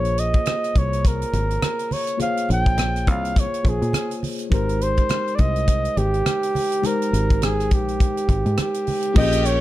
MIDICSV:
0, 0, Header, 1, 6, 480
1, 0, Start_track
1, 0, Tempo, 579710
1, 1823, Time_signature, 4, 2, 24, 8
1, 7954, End_track
2, 0, Start_track
2, 0, Title_t, "Flugelhorn"
2, 0, Program_c, 0, 56
2, 0, Note_on_c, 0, 73, 83
2, 162, Note_on_c, 0, 75, 95
2, 175, Note_off_c, 0, 73, 0
2, 646, Note_on_c, 0, 73, 88
2, 658, Note_off_c, 0, 75, 0
2, 887, Note_on_c, 0, 70, 84
2, 899, Note_off_c, 0, 73, 0
2, 1596, Note_on_c, 0, 73, 77
2, 1609, Note_off_c, 0, 70, 0
2, 1830, Note_off_c, 0, 73, 0
2, 1838, Note_on_c, 0, 77, 96
2, 2055, Note_off_c, 0, 77, 0
2, 2085, Note_on_c, 0, 79, 108
2, 2564, Note_on_c, 0, 77, 90
2, 2576, Note_off_c, 0, 79, 0
2, 2810, Note_on_c, 0, 73, 93
2, 2823, Note_off_c, 0, 77, 0
2, 3055, Note_on_c, 0, 68, 81
2, 3067, Note_off_c, 0, 73, 0
2, 3540, Note_off_c, 0, 68, 0
2, 3761, Note_on_c, 0, 70, 88
2, 3995, Note_on_c, 0, 72, 105
2, 4008, Note_off_c, 0, 70, 0
2, 4430, Note_on_c, 0, 74, 74
2, 4443, Note_off_c, 0, 72, 0
2, 4472, Note_on_c, 0, 75, 102
2, 4485, Note_off_c, 0, 74, 0
2, 4953, Note_on_c, 0, 67, 85
2, 4965, Note_off_c, 0, 75, 0
2, 5678, Note_on_c, 0, 70, 100
2, 5691, Note_off_c, 0, 67, 0
2, 6160, Note_on_c, 0, 68, 82
2, 6173, Note_off_c, 0, 70, 0
2, 6408, Note_on_c, 0, 67, 76
2, 6421, Note_off_c, 0, 68, 0
2, 7117, Note_off_c, 0, 67, 0
2, 7127, Note_on_c, 0, 67, 80
2, 7563, Note_off_c, 0, 67, 0
2, 7595, Note_on_c, 0, 75, 116
2, 7829, Note_on_c, 0, 73, 124
2, 7841, Note_off_c, 0, 75, 0
2, 7954, Note_off_c, 0, 73, 0
2, 7954, End_track
3, 0, Start_track
3, 0, Title_t, "String section"
3, 0, Program_c, 1, 48
3, 7583, Note_on_c, 1, 79, 110
3, 7585, Note_on_c, 1, 67, 106
3, 7940, Note_off_c, 1, 79, 0
3, 7941, Note_off_c, 1, 67, 0
3, 7954, End_track
4, 0, Start_track
4, 0, Title_t, "Tine electric piano"
4, 0, Program_c, 2, 4
4, 0, Note_on_c, 2, 58, 61
4, 0, Note_on_c, 2, 65, 56
4, 0, Note_on_c, 2, 68, 52
4, 0, Note_on_c, 2, 72, 53
4, 0, Note_on_c, 2, 73, 60
4, 43, Control_c, 2, 64, 127
4, 1781, Note_off_c, 2, 58, 0
4, 1786, Note_off_c, 2, 65, 0
4, 1791, Note_off_c, 2, 68, 0
4, 1794, Note_off_c, 2, 72, 0
4, 1798, Note_on_c, 2, 58, 57
4, 1800, Note_off_c, 2, 73, 0
4, 1809, Note_on_c, 2, 65, 55
4, 1817, Note_on_c, 2, 68, 52
4, 1824, Note_on_c, 2, 72, 54
4, 1836, Note_on_c, 2, 73, 70
4, 2987, Note_off_c, 2, 58, 0
4, 2993, Note_off_c, 2, 65, 0
4, 2997, Note_off_c, 2, 68, 0
4, 3001, Note_off_c, 2, 72, 0
4, 3007, Note_off_c, 2, 73, 0
4, 3007, Note_on_c, 2, 58, 42
4, 3011, Note_on_c, 2, 65, 42
4, 3014, Note_on_c, 2, 68, 40
4, 3023, Note_on_c, 2, 72, 40
4, 3028, Note_on_c, 2, 73, 45
4, 3724, Note_on_c, 2, 56, 61
4, 3730, Note_on_c, 2, 63, 56
4, 3736, Note_off_c, 2, 58, 0
4, 3737, Note_on_c, 2, 67, 51
4, 3738, Note_off_c, 2, 65, 0
4, 3740, Note_off_c, 2, 68, 0
4, 3744, Note_off_c, 2, 72, 0
4, 3744, Note_on_c, 2, 70, 59
4, 3747, Note_off_c, 2, 73, 0
4, 3755, Control_c, 2, 64, 0
4, 3755, Note_on_c, 2, 72, 75
4, 3890, Control_c, 2, 64, 127
4, 5622, Note_off_c, 2, 56, 0
4, 5625, Note_off_c, 2, 63, 0
4, 5629, Note_off_c, 2, 67, 0
4, 5632, Note_off_c, 2, 70, 0
4, 5638, Note_off_c, 2, 72, 0
4, 5648, Note_on_c, 2, 56, 63
4, 5657, Note_on_c, 2, 63, 55
4, 5668, Note_on_c, 2, 67, 55
4, 5677, Note_on_c, 2, 70, 52
4, 5686, Note_on_c, 2, 72, 63
4, 7543, Note_off_c, 2, 56, 0
4, 7548, Note_off_c, 2, 63, 0
4, 7553, Note_off_c, 2, 67, 0
4, 7558, Note_off_c, 2, 70, 0
4, 7562, Note_off_c, 2, 72, 0
4, 7567, Note_on_c, 2, 58, 67
4, 7571, Note_on_c, 2, 65, 64
4, 7584, Note_on_c, 2, 68, 64
4, 7594, Note_on_c, 2, 70, 62
4, 7596, Control_c, 2, 64, 0
4, 7603, Note_on_c, 2, 61, 77
4, 7741, Control_c, 2, 64, 127
4, 7954, Note_off_c, 2, 58, 0
4, 7954, Note_off_c, 2, 61, 0
4, 7954, Note_off_c, 2, 65, 0
4, 7954, Note_off_c, 2, 68, 0
4, 7954, Note_off_c, 2, 70, 0
4, 7954, End_track
5, 0, Start_track
5, 0, Title_t, "Fingered electric bass"
5, 0, Program_c, 3, 33
5, 0, Note_on_c, 3, 34, 91
5, 297, Note_off_c, 3, 34, 0
5, 626, Note_on_c, 3, 36, 75
5, 1020, Note_off_c, 3, 36, 0
5, 1103, Note_on_c, 3, 32, 80
5, 1301, Note_off_c, 3, 32, 0
5, 2069, Note_on_c, 3, 34, 91
5, 2545, Note_off_c, 3, 34, 0
5, 2545, Note_on_c, 3, 36, 83
5, 2857, Note_off_c, 3, 36, 0
5, 3021, Note_on_c, 3, 34, 75
5, 3137, Note_off_c, 3, 34, 0
5, 3161, Note_on_c, 3, 46, 86
5, 3245, Note_off_c, 3, 46, 0
5, 3742, Note_on_c, 3, 32, 96
5, 4139, Note_off_c, 3, 32, 0
5, 4466, Note_on_c, 3, 36, 86
5, 4861, Note_off_c, 3, 36, 0
5, 4943, Note_on_c, 3, 32, 77
5, 5142, Note_off_c, 3, 32, 0
5, 5905, Note_on_c, 3, 32, 79
5, 6388, Note_off_c, 3, 32, 0
5, 6388, Note_on_c, 3, 34, 80
5, 6699, Note_off_c, 3, 34, 0
5, 6862, Note_on_c, 3, 32, 78
5, 6978, Note_off_c, 3, 32, 0
5, 7002, Note_on_c, 3, 44, 87
5, 7087, Note_off_c, 3, 44, 0
5, 7587, Note_on_c, 3, 34, 107
5, 7954, Note_off_c, 3, 34, 0
5, 7954, End_track
6, 0, Start_track
6, 0, Title_t, "Drums"
6, 39, Note_on_c, 9, 42, 47
6, 122, Note_off_c, 9, 42, 0
6, 146, Note_on_c, 9, 42, 73
6, 229, Note_off_c, 9, 42, 0
6, 278, Note_on_c, 9, 42, 40
6, 283, Note_on_c, 9, 36, 75
6, 361, Note_off_c, 9, 42, 0
6, 366, Note_off_c, 9, 36, 0
6, 377, Note_on_c, 9, 42, 76
6, 390, Note_on_c, 9, 37, 105
6, 390, Note_on_c, 9, 63, 60
6, 460, Note_off_c, 9, 42, 0
6, 473, Note_off_c, 9, 37, 0
6, 473, Note_off_c, 9, 63, 0
6, 529, Note_on_c, 9, 37, 29
6, 529, Note_on_c, 9, 42, 44
6, 612, Note_off_c, 9, 37, 0
6, 612, Note_off_c, 9, 42, 0
6, 624, Note_on_c, 9, 42, 68
6, 626, Note_on_c, 9, 36, 78
6, 707, Note_off_c, 9, 42, 0
6, 708, Note_off_c, 9, 36, 0
6, 770, Note_on_c, 9, 42, 42
6, 853, Note_off_c, 9, 42, 0
6, 867, Note_on_c, 9, 36, 96
6, 868, Note_on_c, 9, 42, 99
6, 949, Note_off_c, 9, 36, 0
6, 951, Note_off_c, 9, 42, 0
6, 1007, Note_on_c, 9, 42, 51
6, 1090, Note_off_c, 9, 42, 0
6, 1106, Note_on_c, 9, 62, 53
6, 1109, Note_on_c, 9, 42, 60
6, 1189, Note_off_c, 9, 62, 0
6, 1192, Note_off_c, 9, 42, 0
6, 1246, Note_on_c, 9, 42, 43
6, 1329, Note_off_c, 9, 42, 0
6, 1343, Note_on_c, 9, 42, 83
6, 1344, Note_on_c, 9, 63, 66
6, 1345, Note_on_c, 9, 37, 99
6, 1426, Note_off_c, 9, 42, 0
6, 1427, Note_off_c, 9, 63, 0
6, 1428, Note_off_c, 9, 37, 0
6, 1483, Note_on_c, 9, 42, 51
6, 1566, Note_off_c, 9, 42, 0
6, 1582, Note_on_c, 9, 63, 52
6, 1588, Note_on_c, 9, 46, 71
6, 1665, Note_off_c, 9, 63, 0
6, 1671, Note_off_c, 9, 46, 0
6, 1714, Note_on_c, 9, 42, 60
6, 1797, Note_off_c, 9, 42, 0
6, 1820, Note_on_c, 9, 62, 50
6, 1822, Note_on_c, 9, 42, 77
6, 1902, Note_off_c, 9, 62, 0
6, 1904, Note_off_c, 9, 42, 0
6, 1964, Note_on_c, 9, 42, 51
6, 2047, Note_off_c, 9, 42, 0
6, 2060, Note_on_c, 9, 62, 26
6, 2072, Note_on_c, 9, 42, 72
6, 2143, Note_off_c, 9, 62, 0
6, 2155, Note_off_c, 9, 42, 0
6, 2204, Note_on_c, 9, 42, 42
6, 2205, Note_on_c, 9, 36, 81
6, 2287, Note_off_c, 9, 36, 0
6, 2287, Note_off_c, 9, 42, 0
6, 2300, Note_on_c, 9, 42, 83
6, 2300, Note_on_c, 9, 63, 63
6, 2313, Note_on_c, 9, 37, 95
6, 2382, Note_off_c, 9, 42, 0
6, 2383, Note_off_c, 9, 63, 0
6, 2395, Note_off_c, 9, 37, 0
6, 2450, Note_on_c, 9, 37, 31
6, 2450, Note_on_c, 9, 42, 37
6, 2533, Note_off_c, 9, 37, 0
6, 2533, Note_off_c, 9, 42, 0
6, 2543, Note_on_c, 9, 42, 68
6, 2545, Note_on_c, 9, 36, 82
6, 2626, Note_off_c, 9, 42, 0
6, 2627, Note_off_c, 9, 36, 0
6, 2689, Note_on_c, 9, 42, 44
6, 2772, Note_off_c, 9, 42, 0
6, 2785, Note_on_c, 9, 36, 89
6, 2790, Note_on_c, 9, 42, 89
6, 2868, Note_off_c, 9, 36, 0
6, 2872, Note_off_c, 9, 42, 0
6, 2929, Note_on_c, 9, 42, 50
6, 3012, Note_off_c, 9, 42, 0
6, 3020, Note_on_c, 9, 36, 83
6, 3024, Note_on_c, 9, 62, 50
6, 3031, Note_on_c, 9, 42, 63
6, 3103, Note_off_c, 9, 36, 0
6, 3107, Note_off_c, 9, 62, 0
6, 3114, Note_off_c, 9, 42, 0
6, 3164, Note_on_c, 9, 42, 41
6, 3247, Note_off_c, 9, 42, 0
6, 3256, Note_on_c, 9, 63, 60
6, 3263, Note_on_c, 9, 42, 91
6, 3265, Note_on_c, 9, 37, 93
6, 3339, Note_off_c, 9, 63, 0
6, 3346, Note_off_c, 9, 42, 0
6, 3348, Note_off_c, 9, 37, 0
6, 3403, Note_on_c, 9, 42, 51
6, 3486, Note_off_c, 9, 42, 0
6, 3501, Note_on_c, 9, 63, 50
6, 3508, Note_on_c, 9, 46, 69
6, 3584, Note_off_c, 9, 63, 0
6, 3591, Note_off_c, 9, 46, 0
6, 3632, Note_on_c, 9, 42, 51
6, 3715, Note_off_c, 9, 42, 0
6, 3739, Note_on_c, 9, 62, 51
6, 3740, Note_on_c, 9, 36, 105
6, 3743, Note_on_c, 9, 42, 89
6, 3822, Note_off_c, 9, 62, 0
6, 3823, Note_off_c, 9, 36, 0
6, 3826, Note_off_c, 9, 42, 0
6, 3883, Note_on_c, 9, 42, 51
6, 3966, Note_off_c, 9, 42, 0
6, 3985, Note_on_c, 9, 42, 69
6, 4068, Note_off_c, 9, 42, 0
6, 4118, Note_on_c, 9, 42, 40
6, 4122, Note_on_c, 9, 36, 69
6, 4200, Note_off_c, 9, 42, 0
6, 4205, Note_off_c, 9, 36, 0
6, 4215, Note_on_c, 9, 42, 73
6, 4222, Note_on_c, 9, 63, 57
6, 4228, Note_on_c, 9, 37, 99
6, 4298, Note_off_c, 9, 42, 0
6, 4305, Note_off_c, 9, 63, 0
6, 4311, Note_off_c, 9, 37, 0
6, 4368, Note_on_c, 9, 42, 38
6, 4451, Note_off_c, 9, 42, 0
6, 4458, Note_on_c, 9, 42, 69
6, 4464, Note_on_c, 9, 36, 79
6, 4540, Note_off_c, 9, 42, 0
6, 4547, Note_off_c, 9, 36, 0
6, 4602, Note_on_c, 9, 42, 40
6, 4684, Note_off_c, 9, 42, 0
6, 4699, Note_on_c, 9, 42, 93
6, 4702, Note_on_c, 9, 36, 93
6, 4782, Note_off_c, 9, 42, 0
6, 4785, Note_off_c, 9, 36, 0
6, 4843, Note_on_c, 9, 42, 51
6, 4926, Note_off_c, 9, 42, 0
6, 4944, Note_on_c, 9, 42, 58
6, 4945, Note_on_c, 9, 62, 53
6, 5027, Note_off_c, 9, 42, 0
6, 5027, Note_off_c, 9, 62, 0
6, 5083, Note_on_c, 9, 42, 42
6, 5165, Note_off_c, 9, 42, 0
6, 5182, Note_on_c, 9, 42, 93
6, 5184, Note_on_c, 9, 37, 93
6, 5184, Note_on_c, 9, 63, 60
6, 5265, Note_off_c, 9, 42, 0
6, 5266, Note_off_c, 9, 63, 0
6, 5267, Note_off_c, 9, 37, 0
6, 5324, Note_on_c, 9, 42, 52
6, 5407, Note_off_c, 9, 42, 0
6, 5424, Note_on_c, 9, 63, 54
6, 5430, Note_on_c, 9, 46, 69
6, 5507, Note_off_c, 9, 63, 0
6, 5513, Note_off_c, 9, 46, 0
6, 5562, Note_on_c, 9, 42, 58
6, 5645, Note_off_c, 9, 42, 0
6, 5659, Note_on_c, 9, 62, 51
6, 5666, Note_on_c, 9, 42, 85
6, 5742, Note_off_c, 9, 62, 0
6, 5748, Note_off_c, 9, 42, 0
6, 5810, Note_on_c, 9, 42, 49
6, 5893, Note_off_c, 9, 42, 0
6, 5910, Note_on_c, 9, 42, 68
6, 5992, Note_off_c, 9, 42, 0
6, 6046, Note_on_c, 9, 42, 39
6, 6048, Note_on_c, 9, 36, 75
6, 6129, Note_off_c, 9, 42, 0
6, 6131, Note_off_c, 9, 36, 0
6, 6142, Note_on_c, 9, 42, 78
6, 6144, Note_on_c, 9, 63, 52
6, 6155, Note_on_c, 9, 37, 104
6, 6225, Note_off_c, 9, 42, 0
6, 6226, Note_off_c, 9, 63, 0
6, 6238, Note_off_c, 9, 37, 0
6, 6294, Note_on_c, 9, 37, 31
6, 6294, Note_on_c, 9, 42, 40
6, 6377, Note_off_c, 9, 37, 0
6, 6377, Note_off_c, 9, 42, 0
6, 6383, Note_on_c, 9, 42, 78
6, 6387, Note_on_c, 9, 36, 87
6, 6466, Note_off_c, 9, 42, 0
6, 6470, Note_off_c, 9, 36, 0
6, 6528, Note_on_c, 9, 42, 42
6, 6611, Note_off_c, 9, 42, 0
6, 6627, Note_on_c, 9, 36, 97
6, 6628, Note_on_c, 9, 42, 89
6, 6710, Note_off_c, 9, 36, 0
6, 6711, Note_off_c, 9, 42, 0
6, 6766, Note_on_c, 9, 42, 49
6, 6849, Note_off_c, 9, 42, 0
6, 6862, Note_on_c, 9, 36, 79
6, 6864, Note_on_c, 9, 42, 67
6, 6867, Note_on_c, 9, 62, 51
6, 6945, Note_off_c, 9, 36, 0
6, 6946, Note_off_c, 9, 42, 0
6, 6950, Note_off_c, 9, 62, 0
6, 7003, Note_on_c, 9, 42, 40
6, 7086, Note_off_c, 9, 42, 0
6, 7100, Note_on_c, 9, 42, 81
6, 7102, Note_on_c, 9, 37, 91
6, 7108, Note_on_c, 9, 63, 55
6, 7183, Note_off_c, 9, 42, 0
6, 7184, Note_off_c, 9, 37, 0
6, 7191, Note_off_c, 9, 63, 0
6, 7239, Note_on_c, 9, 42, 51
6, 7322, Note_off_c, 9, 42, 0
6, 7342, Note_on_c, 9, 46, 73
6, 7351, Note_on_c, 9, 63, 51
6, 7425, Note_off_c, 9, 46, 0
6, 7434, Note_off_c, 9, 63, 0
6, 7472, Note_on_c, 9, 42, 59
6, 7555, Note_off_c, 9, 42, 0
6, 7581, Note_on_c, 9, 49, 114
6, 7584, Note_on_c, 9, 36, 113
6, 7588, Note_on_c, 9, 62, 60
6, 7664, Note_off_c, 9, 49, 0
6, 7667, Note_off_c, 9, 36, 0
6, 7670, Note_off_c, 9, 62, 0
6, 7721, Note_on_c, 9, 42, 62
6, 7803, Note_off_c, 9, 42, 0
6, 7827, Note_on_c, 9, 42, 77
6, 7909, Note_off_c, 9, 42, 0
6, 7954, End_track
0, 0, End_of_file